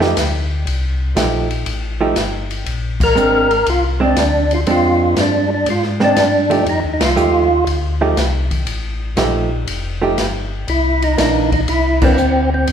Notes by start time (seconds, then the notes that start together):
Already playing: F2
0.00 F3 A3 D#4 G4, snare
0.17 D2, snare, hi-hat pedal, ride
0.66 C2, ride
1.15 A#1 F3 A3 D#4 G4, snare, hi-hat pedal, ride
1.51 ride
1.65 A1, ride
2.01 F3 A3 D#4 G4
2.16 G1, snare, hi-hat pedal, ride
2.51 ride
2.66 A#1, ride
3.00 A#4, kick, crash
3.15 G#1 G#3 C4 D4, hi-hat pedal
3.51 ride
3.66 C2 F4, ride
4.00 G#3 C4 D4
4.04 D4
4.16 D2 D4, snare, hi-hat pedal, ride
4.51 F4, ride
4.66 F2 G#3 C4 D4, ride
4.71 F4
5.16 G2 D4, snare, hi-hat pedal, ride
5.55 D4
5.66 G#2 F4, ride
5.83 snare
6.00 G#3 C4 D4, snare
6.04 D4
6.16 G2, snare, hi-hat pedal, ride
6.50 F3 A3 D#4 G4, ride
6.66 F2 D#4, ride
6.83 D#2
6.94 D#4
7.00 C2, snare, ride
7.05 F4
7.16 D#2 F3 A3 D#4 G4, hi-hat pedal
7.66 D2, ride
8.01 F3 A3 D#4 G4
8.16 C2, snare, hi-hat pedal, ride
8.51 kick, ride
8.67 A1, ride
9.17 A#1 F3 A3 D#4 G4, snare, hi-hat pedal, ride
9.67 F1, ride
10.02 F3 A3 D#4 G4
10.18 G1, snare, hi-hat pedal, ride
10.68 C2 E4, ride
11.02 D#4, ride
11.18 A#1 E3 A#3 D4 D#4, snare, hi-hat pedal, ride
11.52 D#4, kick, ride
11.68 C2 E4, ride
12.02 E3 A#3 C4 D4, kick, crash
12.17 D2, hi-hat pedal
12.54 C4
12.67 E2, ride